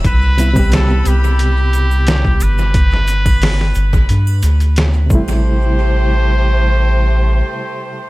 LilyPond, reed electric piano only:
\new Staff \with { instrumentName = "Reed electric piano" } { \clef bass \time 4/4 \key a \minor \tempo 4 = 89 r8 <c g b e'>16 <c g b g'>2.~ <c g b g'>16 | r2. r8 <c g a e'>8~ | <c g a e'>1 | }